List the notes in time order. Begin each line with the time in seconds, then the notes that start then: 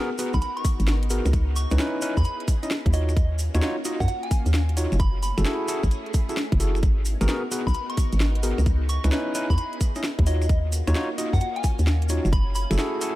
Already playing: B3 D#4 F#4 A#4
0.18 B3 F#4 G#4 B4, open hi-hat, maracas
0.34 B1 B5, kick, maracas
0.41 B5, closed hi-hat, maracas
0.57 C#6, closed hi-hat
0.65 kick, open hi-hat, maracas
0.80 G#1, closed hi-hat, maracas
0.87 snare, maracas
1.03 closed hi-hat
1.10 B3 F#4 G#4 A#4, open hi-hat, maracas
1.25 C#2, finger snap, maracas
1.33 E4 G#4, kick, closed hi-hat, maracas
1.56 C#6, open hi-hat, maracas
1.71 C#2 C#4 D#4 E4 B4, finger snap, closed hi-hat, maracas
1.79 C#4 D#4 E4 B4, snare, maracas
2.02 C#4 D#4 E4 B4, open hi-hat, maracas
2.17 E2 B5, kick, maracas
2.24 B5, closed hi-hat, maracas
2.40 closed hi-hat
2.48 kick, open hi-hat, maracas
2.63 C#4 D#4 E4 D#5, closed hi-hat, maracas
2.70 snare, maracas
2.86 D#2, kick, closed hi-hat
2.93 A#3 C#4 D#4 F4 F#4 C#5 D#5, open hi-hat, maracas
3.09 finger snap, maracas
3.17 kick, closed hi-hat, maracas
3.39 open hi-hat, maracas
3.55 D#2 D#4 F4 F#4 C#5, finger snap, closed hi-hat, maracas
3.62 D#4 F4 F#4 C#5, snare, maracas
3.85 D#4 F4 F#4 D#5, open hi-hat, maracas
4.00 F#2 F#5, kick, maracas
4.08 F#5, closed hi-hat, maracas
4.23 G#5, closed hi-hat
4.31 kick, open hi-hat, maracas
4.46 D#2, closed hi-hat, maracas
4.54 snare, maracas
4.69 closed hi-hat
4.77 D#4 F4 F#4 C#5, open hi-hat, maracas
4.92 F#1, finger snap, maracas
5.00 A3 C#4 E4 G#4 B5, kick, closed hi-hat, maracas
5.23 B5, open hi-hat, maracas
5.38 F#1 E4 F#4 G#4 A4, finger snap, closed hi-hat, maracas
5.45 E4 F#4 G#4 A4, snare, maracas
5.68 E4 F#4 G#4 A4, open hi-hat, maracas
5.83 A1, kick, maracas
5.91 closed hi-hat, maracas
6.06 closed hi-hat
6.14 kick, open hi-hat, maracas
6.29 E4 F#4 G#4 A4, closed hi-hat, maracas
6.37 snare, maracas
6.52 F#1, kick, closed hi-hat
6.60 E4 F#4 G#4 A4, open hi-hat, maracas
6.75 finger snap, maracas
6.83 G#1 B3 D#4 F#4 A#4, kick, closed hi-hat, maracas
7.05 open hi-hat, maracas
7.21 G#1 B3 F#4 G#4 A#4, finger snap, closed hi-hat, maracas
7.28 B3 F#4 G#4 A#4, snare, maracas
7.51 B3 F#4 G#4 B4, open hi-hat, maracas
7.67 B1 B5, kick, maracas
7.74 B5, closed hi-hat, maracas
7.90 C#6, closed hi-hat
7.97 kick, open hi-hat, maracas
8.13 G#1, closed hi-hat, maracas
8.20 snare, maracas
8.35 closed hi-hat
8.43 B3 F#4 G#4 A#4, open hi-hat, maracas
8.58 C#2, finger snap, maracas
8.66 E4 G#4, kick, closed hi-hat, maracas
8.89 C#6, open hi-hat, maracas
9.04 C#2 C#4 D#4 E4 B4, finger snap, closed hi-hat, maracas
9.12 C#4 D#4 E4 B4, snare, maracas
9.35 C#4 D#4 E4 B4, open hi-hat, maracas
9.50 E2 B5, kick, maracas
9.58 B5, closed hi-hat, maracas
9.73 closed hi-hat
9.81 kick, open hi-hat, maracas
9.95 C#4 D#4 E4 D#5, closed hi-hat, maracas
10.04 snare, maracas
10.19 D#2, kick, closed hi-hat
10.26 A#3 C#4 D#4 F4 F#4 C#5 D#5, open hi-hat, maracas
10.42 finger snap, maracas
10.49 kick, closed hi-hat, maracas
10.72 open hi-hat, maracas
10.87 D#2 D#4 F4 F#4 C#5, finger snap, closed hi-hat, maracas
10.95 D#4 F4 F#4 C#5, snare, maracas
11.18 D#4 F4 F#4 D#5, open hi-hat, maracas
11.33 F#2 F#5, kick, maracas
11.40 F#5, closed hi-hat, maracas
11.56 G#5, closed hi-hat
11.64 kick, open hi-hat, maracas
11.79 D#2, closed hi-hat, maracas
11.87 snare, maracas
12.02 closed hi-hat
12.09 D#4 F4 F#4 C#5, open hi-hat, maracas
12.25 F#1, finger snap, maracas
12.32 A3 E4 G#4 B5, kick, closed hi-hat, maracas
12.55 B5, open hi-hat, maracas
12.71 F#1 E4 F#4 G#4 A4, finger snap, closed hi-hat, maracas
12.78 E4 F#4 G#4 A4, snare, maracas
13.01 E4 F#4 G#4 A4, open hi-hat, maracas